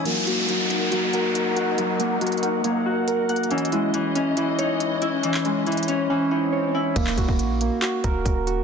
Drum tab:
CC |------------------------------------------------------------------------------------------------|------------------------------------------------------------------------------------------------|------------------------------------------------------------------------------------------------|------------------------------------------------------------------------------------------------|
HH |x-----------x-----------x-----------x-----------x-----------x-----------x-----------x-----------|x-----------x-----------x--x--x--x--x-----------x-----------------------x-----------x---x---x---|x---x---x---x-----------x-----------x-----------x-----------x-----------x-----------x-----------|x-----------x-----------x--x--x--x--x-----------------------------------------------------------|
CP |------------------------------------------------------------------------------------------------|------------------------------------------------------------------------------------------------|------------------------------------------------------------------------------------------------|------x-----------------------------------------------------------------------------------------|
BD |------------------------------------------------------------------------------------------------|------------------------------------------------------------------------------------------------|------------------------------------------------------------------------------------------------|------------------------------------------------------------------------------------------------|

CC |x-----------------------------------------------------------------------------------------------|
HH |x-----------x-----------x-----------x-----------x-----------x-----------x-----------x-----------|
CP |------x-----------------------------------------x-----------------------------------------------|
BD |o-----------o-----o-----------------------------------------o-----------o-----------------------|